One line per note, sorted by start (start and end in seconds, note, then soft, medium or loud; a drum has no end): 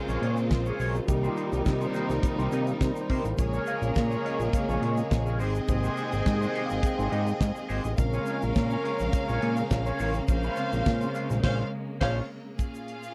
0.00 1.06 C#3 medium
0.00 1.10 C#3 medium
0.00 1.04 G#3 medium
0.00 1.10 G#3 medium
0.00 1.06 A#3 medium
0.00 1.05 C4 medium
0.00 1.10 C4 medium
0.00 1.04 F4 medium
0.00 0.69 G#4 medium
0.00 0.89 A#4 medium
0.00 1.04 C5 medium
0.08 0.18 A#1 medium
0.08 0.21 A#3 medium
0.08 0.21 F4 medium
0.08 0.22 G#4 medium
0.08 0.22 C#5 medium
0.08 closed hi-hat soft
0.08 shaker soft
0.22 0.52 A#2 loud
0.22 0.36 A#3 medium
0.22 0.36 F4 medium
0.22 0.36 G#4 medium
0.22 0.36 C#5 medium
0.22 closed hi-hat medium
0.37 muted clean electric guitar stroke soft
0.37 closed hi-hat soft
0.37 shaker medium
0.51 0.72 A#1 medium
0.51 0.71 F4 medium
0.51 muted clean electric guitar stroke soft
0.51 kick loud
0.51 snare loud
0.51 shaker medium
0.66 0.79 A#3 soft
0.66 0.79 F4 soft
0.66 0.78 G#4 medium
0.66 0.78 C#5 medium
0.66 shaker medium
0.80 1.00 B1 medium
0.80 0.97 A#3 medium
0.80 0.95 F4 medium
0.80 0.95 G#4 medium
0.80 0.94 C#5 medium
0.80 open hi-hat medium
0.80 shaker medium
0.89 1.04 A#4 medium
0.95 muted clean electric guitar stroke soft
0.95 closed hi-hat soft
0.95 shaker soft
1.03 1.93 D#3 medium
1.03 1.08 F#4 medium
1.07 1.29 C2 medium
1.07 3.37 C3 medium
1.07 1.93 G3 medium
1.07 3.35 G3 medium
1.07 3.37 G3 medium
1.07 1.93 A#3 medium
1.07 3.36 A#3 medium
1.07 3.36 D#4 medium
1.07 3.35 D#4 medium
1.07 1.26 G4 medium
1.07 3.35 A#4 loud
1.07 muted clean electric guitar stroke soft
1.07 kick loud
1.07 closed hi-hat medium
1.07 shaker medium
1.23 1.35 A#3 medium
1.23 1.36 D#4 medium
1.23 1.36 G4 medium
1.23 1.36 C5 medium
1.23 shaker medium
1.27 1.45 F4 medium
1.36 1.50 A#3 medium
1.36 1.51 D#4 medium
1.36 1.50 G4 medium
1.36 1.51 C5 medium
1.36 closed hi-hat medium
1.36 shaker medium
1.47 1.65 G4 medium
1.52 1.62 C2 loud
1.52 muted clean electric guitar stroke soft
1.52 closed hi-hat medium
1.52 shaker medium
1.66 1.87 C3 loud
1.66 1.86 A#4 medium
1.66 muted clean electric guitar stroke soft
1.66 kick loud
1.66 snare loud
1.66 shaker medium
1.81 1.93 A#3 soft
1.81 1.93 D#4 soft
1.81 1.93 G4 medium
1.81 1.93 C5 medium
1.81 shaker soft
1.86 1.94 C5 medium
1.94 2.20 D#3 soft
1.94 2.20 G3 soft
1.94 2.11 A#3 medium
1.94 2.20 A#3 soft
1.94 2.09 D#4 medium
1.94 2.09 G4 medium
1.94 2.09 C5 medium
1.94 closed hi-hat medium
1.94 shaker medium
2.05 2.24 C5 medium
2.10 2.19 C2 loud
2.10 muted clean electric guitar stroke soft
2.10 snare soft
2.10 closed hi-hat soft
2.10 shaker medium
2.23 2.52 A#4 medium
2.23 muted clean electric guitar stroke soft
2.23 kick loud
2.23 closed hi-hat medium
2.23 shaker medium
2.38 2.48 C2 loud
2.38 2.51 A#3 soft
2.38 2.51 D#4 soft
2.38 2.51 G4 medium
2.38 2.51 C5 medium
2.38 closed hi-hat soft
2.38 shaker medium
2.52 2.73 C3 loud
2.52 2.69 A#3 medium
2.52 2.67 D#4 medium
2.52 2.67 G4 medium
2.52 2.82 A#4 medium
2.52 2.67 D#5 loud
2.52 closed hi-hat medium
2.52 shaker medium
2.67 muted clean electric guitar stroke soft
2.67 closed hi-hat soft
2.67 shaker soft
2.81 2.92 C3 loud
2.81 2.99 C5 medium
2.81 muted clean electric guitar stroke soft
2.81 kick loud
2.81 snare loud
2.81 shaker medium
2.96 muted clean electric guitar stroke soft
2.96 closed hi-hat soft
2.96 shaker medium
3.01 3.20 C5 medium
3.10 3.21 C3 medium
3.10 3.27 A#3 medium
3.10 3.25 D#4 medium
3.10 3.25 G4 medium
3.10 3.24 C5 loud
3.10 kick medium
3.10 open hi-hat medium
3.20 3.39 A#4 medium
3.24 3.34 A1 medium
3.24 muted clean electric guitar stroke soft
3.24 closed hi-hat soft
3.24 shaker medium
3.37 3.59 A#1 medium
3.37 4.20 C#3 medium
3.37 5.37 C#3 medium
3.37 5.08 F3 medium
3.37 4.20 G#3 medium
3.37 7.94 G#3 medium
3.37 5.38 A#3 medium
3.37 5.36 A#3 medium
3.37 4.20 C#4 medium
3.37 5.07 C#4 medium
3.37 5.36 G#4 medium
3.37 5.08 A#4 medium
3.37 5.36 C#5 medium
3.37 3.65 C#5 loud
3.37 muted clean electric guitar stroke soft
3.37 kick loud
3.37 closed hi-hat medium
3.37 shaker medium
3.53 3.67 C#4 medium
3.53 3.67 F4 medium
3.53 3.67 G#4 medium
3.53 3.68 C#5 medium
3.53 shaker medium
3.66 3.81 C#4 medium
3.66 3.81 F4 medium
3.66 3.81 G#4 medium
3.66 3.81 D#5 medium
3.66 4.27 F5 loud
3.66 closed hi-hat medium
3.66 shaker medium
3.82 3.92 A#1 loud
3.82 muted clean electric guitar stroke medium
3.82 closed hi-hat soft
3.82 shaker medium
3.96 4.17 A#2 loud
3.96 muted clean electric guitar stroke soft
3.96 kick loud
3.96 snare loud
3.96 shaker medium
4.11 4.23 C#4 medium
4.11 4.23 F4 medium
4.11 4.23 G#4 medium
4.11 4.23 C#5 medium
4.11 shaker soft
4.24 4.41 C#4 medium
4.24 4.40 F4 medium
4.24 4.39 G#4 loud
4.24 4.39 C#5 loud
4.24 4.55 D#5 medium
4.24 closed hi-hat medium
4.40 4.49 A#1 loud
4.40 muted clean electric guitar stroke soft
4.40 closed hi-hat soft
4.40 shaker medium
4.53 4.79 C#3 soft
4.53 4.79 G#3 soft
4.53 4.79 C4 medium
4.53 4.73 F5 loud
4.53 muted clean electric guitar stroke soft
4.53 kick loud
4.53 closed hi-hat medium
4.53 shaker medium
4.69 4.78 A#1 loud
4.69 4.81 C#4 medium
4.69 4.81 F4 medium
4.69 4.81 G#4 medium
4.69 4.82 C#5 medium
4.69 shaker medium
4.74 4.91 G#5 loud
4.82 5.03 A#2 loud
4.82 4.96 C#4 medium
4.82 4.96 F4 medium
4.82 4.96 G#4 medium
4.82 4.96 C#5 medium
4.82 closed hi-hat medium
4.92 5.19 D#5 loud
4.97 muted clean electric guitar stroke soft
4.97 closed hi-hat soft
4.97 shaker medium
5.10 5.41 A#1 loud
5.10 muted clean electric guitar stroke soft
5.10 kick loud
5.10 snare loud
5.10 shaker medium
5.26 5.38 C#4 medium
5.26 5.38 F4 soft
5.26 5.38 G#4 soft
5.26 5.38 C#5 medium
5.26 shaker soft
5.39 5.60 G#1 loud
5.39 7.96 C3 medium
5.39 7.66 D#3 medium
5.39 7.96 D#3 medium
5.39 5.56 G#3 medium
5.39 7.66 C4 medium
5.39 7.95 C4 medium
5.39 5.54 D#4 medium
5.39 5.54 G4 medium
5.39 7.65 G#4 medium
5.39 7.95 G#4 medium
5.39 5.54 C5 medium
5.39 7.95 D#5 loud
5.39 open hi-hat medium
5.39 shaker medium
5.55 muted clean electric guitar stroke soft
5.55 closed hi-hat soft
5.55 shaker medium
5.68 5.89 G#1 loud
5.68 6.07 C3 medium
5.68 6.08 A#3 medium
5.68 6.07 G4 medium
5.68 6.28 C5 medium
5.68 muted clean electric guitar stroke soft
5.68 kick loud
5.68 closed hi-hat medium
5.68 shaker medium
5.84 5.96 G#3 medium
5.84 5.96 D#4 medium
5.84 5.96 G4 medium
5.84 5.97 C5 medium
5.84 shaker medium
5.97 6.10 G#3 medium
5.97 6.11 D#4 medium
5.97 6.11 G4 medium
5.97 6.11 C5 medium
5.97 closed hi-hat medium
5.97 shaker medium
6.12 6.23 G#1 loud
6.12 muted clean electric guitar stroke soft
6.12 closed hi-hat soft
6.12 shaker medium
6.26 6.47 G#2 loud
6.26 6.62 D#5 medium
6.26 muted clean electric guitar stroke soft
6.26 kick loud
6.26 snare loud
6.26 shaker medium
6.41 6.53 G#3 medium
6.41 6.53 D#4 medium
6.41 6.53 G4 medium
6.41 6.53 C5 medium
6.41 shaker soft
6.55 6.72 G#3 medium
6.55 6.69 D#4 medium
6.55 6.69 G4 loud
6.55 6.69 C5 medium
6.55 closed hi-hat medium
6.66 6.74 F5 loud
6.70 6.81 G#1 medium
6.70 muted clean electric guitar stroke soft
6.70 closed hi-hat soft
6.70 shaker medium
6.83 7.44 G5 medium
6.83 muted clean electric guitar stroke soft
6.83 kick loud
6.83 closed hi-hat medium
6.83 shaker medium
6.98 7.09 G#1 loud
6.98 7.10 G#3 medium
6.98 7.10 D#4 medium
6.98 7.10 G4 medium
6.98 7.10 C5 medium
6.98 closed hi-hat soft
6.98 shaker soft
7.11 7.33 G#2 loud
7.11 7.29 G#3 loud
7.11 7.26 D#4 loud
7.11 7.26 G4 loud
7.11 7.27 D#5 loud
7.11 closed hi-hat medium
7.27 muted clean electric guitar stroke soft
7.27 closed hi-hat soft
7.27 shaker medium
7.41 7.52 G#2 loud
7.41 7.95 D#5 medium
7.41 muted clean electric guitar stroke soft
7.41 kick loud
7.41 snare loud
7.41 shaker medium
7.55 muted clean electric guitar stroke soft
7.55 shaker medium
7.69 7.81 G#1 medium
7.69 7.86 G#3 medium
7.69 7.84 D#4 medium
7.69 7.84 G4 medium
7.69 7.83 C5 medium
7.69 open hi-hat medium
7.69 shaker medium
7.84 7.95 A1 medium
7.84 muted clean electric guitar stroke soft
7.84 closed hi-hat soft
7.84 shaker medium
7.97 8.19 A#1 medium
7.97 12.55 C#3 medium
7.97 8.81 C#3 medium
7.97 9.96 F3 medium
7.97 10.26 G#3 medium
7.97 8.81 G#3 soft
7.97 12.55 A#3 loud
7.97 8.81 C4 medium
7.97 10.24 C#4 medium
7.97 9.96 C#4 loud
7.97 10.25 A#4 medium
7.97 9.96 A#4 medium
7.97 10.24 F5 medium
7.97 muted clean electric guitar stroke soft
7.97 kick loud
7.97 closed hi-hat medium
7.97 shaker medium
8.13 8.26 C#4 medium
8.13 8.26 F4 medium
8.13 8.27 G#4 medium
8.13 8.28 C#5 medium
8.13 closed hi-hat soft
8.13 shaker medium
8.26 8.41 C#4 medium
8.26 8.41 F4 medium
8.26 8.41 G#4 medium
8.26 8.41 D#5 medium
8.26 closed hi-hat medium
8.26 shaker medium
8.42 8.53 A#1 loud
8.42 muted clean electric guitar stroke soft
8.42 closed hi-hat soft
8.42 shaker medium
8.56 8.77 A#2 loud
8.56 muted clean electric guitar stroke soft
8.56 kick loud
8.56 snare loud
8.56 shaker medium
8.70 8.82 C#4 medium
8.70 8.83 F4 medium
8.70 8.83 G#4 medium
8.70 8.83 C#5 medium
8.70 shaker soft
8.84 9.01 C#4 loud
8.84 8.99 F4 loud
8.84 8.98 G#4 loud
8.84 8.98 C#5 medium
8.84 9.14 C#5 medium
8.84 closed hi-hat medium
8.99 9.10 A#1 loud
8.99 muted clean electric guitar stroke medium
8.99 closed hi-hat soft
8.99 shaker medium
9.12 9.43 F5 medium
9.12 muted clean electric guitar stroke soft
9.12 kick loud
9.12 closed hi-hat medium
9.12 shaker medium
9.28 9.39 A#1 medium
9.28 9.40 C#4 medium
9.28 9.40 F4 medium
9.28 9.41 G#4 medium
9.28 9.41 C#5 medium
9.28 closed hi-hat soft
9.28 shaker medium
9.41 9.63 A#2 loud
9.41 9.55 C#4 medium
9.41 9.55 F4 medium
9.41 9.56 G#4 medium
9.41 9.56 C#5 medium
9.41 9.57 G#5 loud
9.41 closed hi-hat medium
9.56 9.87 F5 loud
9.56 muted clean electric guitar stroke medium
9.56 closed hi-hat soft
9.56 shaker medium
9.71 9.92 A#1 loud
9.71 muted clean electric guitar stroke soft
9.71 kick loud
9.71 snare loud
9.71 shaker medium
9.84 9.99 C#4 soft
9.84 9.98 F4 soft
9.84 9.98 G#4 medium
9.84 10.68 C#5 medium
9.84 9.98 C#5 medium
9.84 closed hi-hat soft
9.84 shaker soft
9.99 10.21 A1 medium
9.99 10.17 C#4 medium
9.99 10.15 F4 loud
9.99 10.15 G#4 loud
9.99 10.14 C#5 medium
9.99 open hi-hat medium
9.99 shaker medium
10.14 muted clean electric guitar stroke soft
10.14 closed hi-hat soft
10.14 shaker medium
10.28 10.49 A#1 loud
10.28 12.57 G#3 medium
10.28 11.41 C#4 medium
10.28 11.41 C5 medium
10.28 11.41 F5 medium
10.28 11.41 F5 loud
10.28 muted clean electric guitar stroke soft
10.28 kick loud
10.28 closed hi-hat medium
10.28 shaker medium
10.43 10.56 G#3 medium
10.43 10.56 C#4 medium
10.43 10.56 F4 medium
10.43 10.56 C5 medium
10.43 shaker medium
10.56 10.96 C#3 medium
10.56 10.71 G#3 medium
10.56 10.96 G#3 medium
10.56 10.97 C4 medium
10.56 10.71 C#4 medium
10.56 10.71 F4 medium
10.56 10.71 C5 medium
10.56 closed hi-hat medium
10.56 shaker medium
10.72 10.83 A#1 loud
10.72 muted clean electric guitar stroke medium
10.72 closed hi-hat soft
10.72 shaker medium
10.86 11.07 A#2 loud
10.86 muted clean electric guitar stroke soft
10.86 kick loud
10.86 snare loud
10.86 shaker medium
11.01 11.13 G#3 medium
11.01 11.14 C#4 medium
11.01 11.13 F4 medium
11.01 11.13 C5 medium
11.01 closed hi-hat soft
11.01 shaker soft
11.14 11.32 G#3 loud
11.14 11.29 C#4 loud
11.14 11.29 F4 medium
11.14 11.28 C5 medium
11.14 closed hi-hat medium
11.14 shaker medium
11.30 11.40 A#1 medium
11.30 muted clean electric guitar stroke soft
11.30 snare soft
11.30 closed hi-hat medium
11.30 shaker medium
11.43 11.64 A#1 loud
11.43 11.64 G#3 loud
11.43 11.64 C#4 medium
11.43 11.59 C#4 loud
11.43 11.64 C#4 loud
11.43 11.64 F4 loud
11.43 11.63 C5 loud
11.43 11.59 C5 loud
11.43 11.64 C5 medium
11.43 11.59 F5 loud
11.43 11.64 F5 loud
11.43 kick loud
11.43 snare loud
11.43 crash medium
12.01 12.21 A#1 loud
12.01 12.21 G#3 loud
12.01 12.16 C#4 medium
12.01 12.21 C#4 loud
12.01 12.22 F4 loud
12.01 12.16 C5 loud
12.01 12.21 C5 loud
12.01 12.22 C#5 loud
12.01 12.16 F5 loud
12.01 12.21 F5 medium
12.01 kick loud
12.01 snare loud
12.01 crash medium
12.58 13.14 A#2 medium
12.58 13.14 A#3 medium
12.58 13.14 C#4 medium
12.58 13.14 F4 medium
12.58 13.14 G#4 medium
12.58 13.14 F5 medium
12.58 kick medium
12.58 closed hi-hat medium
12.58 shaker medium
12.75 closed hi-hat soft
12.75 shaker soft
12.88 closed hi-hat medium
13.03 closed hi-hat soft
13.03 shaker soft